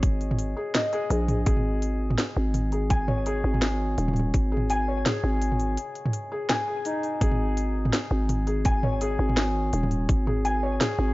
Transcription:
Already playing: G#1 G#4 C#5 D#5
0.03 kick, closed hi-hat
0.21 closed hi-hat
0.31 mid tom
0.39 closed hi-hat
0.57 G#4
0.75 D#5, snare, closed hi-hat, mid tom
0.93 G#4, closed hi-hat
1.10 A#1 G#4, closed hi-hat
1.28 closed hi-hat, mid tom
1.46 G#1 G#4, kick, closed hi-hat
1.57 mid tom
1.82 closed hi-hat
2.10 mid tom
2.18 snare, closed hi-hat
2.37 G#1
2.54 closed hi-hat, mid tom
2.72 G#4, closed hi-hat
2.90 G#5, kick, closed hi-hat
3.08 C#5, mid tom
3.26 G#4, closed hi-hat
3.44 G#1
3.54 mid tom
3.62 snare, closed hi-hat
3.98 D#1, closed hi-hat
4.08 mid tom
4.14 closed hi-hat, mid tom
4.20 mid tom
4.34 G#1, kick, closed hi-hat
4.52 G#4
4.57 mid tom
4.70 G#5, closed hi-hat
4.88 C#5
5.06 G#4, snare, closed hi-hat, mid tom
5.24 G#1
5.42 closed hi-hat
5.52 mid tom
5.60 closed hi-hat
5.77 closed hi-hat
5.95 closed hi-hat
6.06 mid tom
6.13 closed hi-hat
6.32 G#4
6.49 G#5, snare, closed hi-hat, mid tom
6.68 G#4
6.85 D#4, closed hi-hat
7.03 closed hi-hat
7.21 G#1 G#4, kick, closed hi-hat
7.31 mid tom
7.57 closed hi-hat
7.85 mid tom
7.93 snare, closed hi-hat
8.11 G#1
8.29 closed hi-hat, mid tom
8.47 G#4, closed hi-hat
8.65 G#5, kick, closed hi-hat
8.83 C#5, mid tom
9.01 G#4, closed hi-hat
9.19 G#1
9.29 mid tom
9.37 snare, closed hi-hat
9.73 D#1, closed hi-hat
9.83 mid tom
9.91 closed hi-hat
10.09 G#1, kick, closed hi-hat
10.27 G#4, mid tom
10.45 G#5, closed hi-hat
10.63 C#5
10.81 G#4, snare, closed hi-hat, mid tom
10.99 G#1

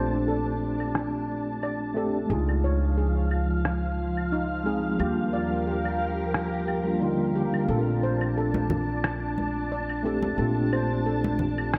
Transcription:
Already playing: A#1 A3 C4 D4 F4 G4 C5 A5
0.28 A4
0.80 claves
0.95 cross-stick
1.63 D5, claves
1.94 A3 C4 D4 G4 A4
2.26 C#2 G#3
2.30 F3 D#4 F4 G#4 F5
2.49 claves
2.64 C#5
2.98 G#4
3.31 claves
3.65 cross-stick
4.17 claves
4.32 D#4
4.64 G#3 C4 D#4 G#4
4.96 D#2 G3 A#3 G4, claves
5.01 D4 F4 G4 A#4
5.33 D5
5.67 G4
5.85 claves
6.34 cross-stick
6.68 claves
6.84 G3 A#3 D4 F4
7.00 D3 G3 A#3 D#4 F4
7.36 G4
7.54 claves
7.65 A#1 A3 C4 D4 A5
7.69 D4 F4 A4
8.03 C5
8.21 claves
8.37 A4
8.54 high conga
8.70 low conga
9.04 cross-stick, claves
9.38 high conga
9.72 D5
9.89 claves
10.03 A3 C4 D4 G4 A4
10.23 high conga
10.35 A#1 A3 C4
10.39 D4 F4 A4
10.73 C5, claves
11.06 A4
11.24 high conga
11.39 low conga
11.58 claves
11.74 cross-stick

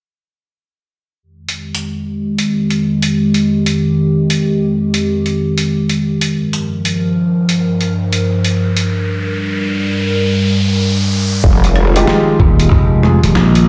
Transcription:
1.23 F2 D#3 G#3 G4
1.49 closed hi-hat
1.75 closed hi-hat
2.38 closed hi-hat
2.70 closed hi-hat
3.02 closed hi-hat
3.34 closed hi-hat
3.66 closed hi-hat
4.30 closed hi-hat
4.94 closed hi-hat
5.26 closed hi-hat
5.58 closed hi-hat
5.89 closed hi-hat
6.21 closed hi-hat
6.33 G2 F3 A#4, riser
6.53 closed hi-hat
6.85 closed hi-hat
7.49 closed hi-hat
7.81 closed hi-hat
8.13 closed hi-hat
8.45 closed hi-hat
8.77 closed hi-hat
8.89 G3
11.44 F1 D#3 F3 G#3 G4, kick
11.64 closed hi-hat
11.76 cross-stick
11.96 G#3 D#4 F4 G4, closed hi-hat
12.07 snare
12.40 D#1, kick
12.60 closed hi-hat
12.72 F1, kick
13.03 G#3 D#4 F4 G#4, cross-stick
13.23 D#1, closed hi-hat
13.35 A#1, snare
13.55 closed hi-hat

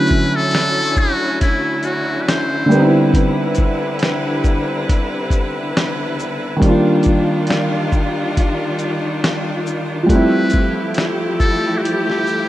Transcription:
Already playing: D3 F#3 A3 C#4 E4 B4
0.07 kick, closed hi-hat, shaker
0.36 A4
0.51 snare, closed hi-hat
0.96 F#4, kick, shaker
1.41 E4, kick, closed hi-hat
1.83 F#4, closed hi-hat, shaker
2.22 B4
2.29 C5, snare, closed hi-hat
2.66 D3 G3
2.71 C3 B3 B4, shaker
2.75 C4 D#4
2.85 E4
3.14 kick, closed hi-hat
3.55 kick, closed hi-hat, shaker
3.99 snare, closed hi-hat
4.44 kick, shaker
4.89 kick, closed hi-hat
5.30 kick, closed hi-hat, shaker
5.77 snare, closed hi-hat
6.19 shaker
6.57 D#3 G3
6.62 D#3 G3 A#3 D4 F4, kick, closed hi-hat
6.69 F4
7.03 kick, closed hi-hat, shaker
7.47 snare, closed hi-hat
7.92 kick, shaker
8.37 kick, closed hi-hat
8.79 closed hi-hat, shaker
9.24 snare, closed hi-hat
9.67 shaker
10.03 F3 G3
10.09 F3 A3 C4 E4 G4 B4, kick, closed hi-hat
10.15 E4
10.50 kick, closed hi-hat, shaker
10.94 snare, closed hi-hat
11.40 A4, kick, shaker
11.78 F#4
11.82 G4, closed hi-hat
12.10 snare
12.27 shaker

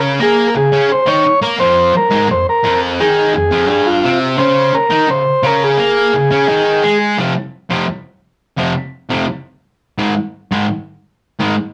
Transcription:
Already playing: C#3 C#4
0.19 A#3 G#4 A#4
0.47 A#4
0.55 C#3 G#4
0.72 C#3 C#4
0.90 C5, muted distorted electric guitar stroke
1.06 D#3 D#4 C#5
1.25 muted distorted electric guitar stroke
1.42 A#3 A#4
1.59 F2 F3 C5
1.94 A#4, muted distorted electric guitar stroke
2.11 G#2 G#3
2.29 F2 C5
2.49 A#4
2.64 F2 F3
3.00 D#3 D#4 G#4
3.33 F2 G#4
3.51 F2 F3
3.69 G2 G3 G#4
3.86 F4
4.04 C3 C4
4.38 C#3 C#4 C5
4.74 A#4, muted distorted electric guitar stroke
4.90 D#3 D#4
5.08 C#3 C5
5.43 C#3 C#4 A#4
5.64 G#4
5.78 A#3 A#4
6.13 C#3
6.31 C#3 C#4
6.48 D#3 D#4
6.83 G#3 G#4
7.18 F2 C3 F3
7.70 F2 C3 F3
8.57 F2 C3 F3
9.10 F2 C3 F3
9.98 G#2 D#3 G#3
10.51 G#2 D#3 G#3
11.40 G#2 D#3 G#3

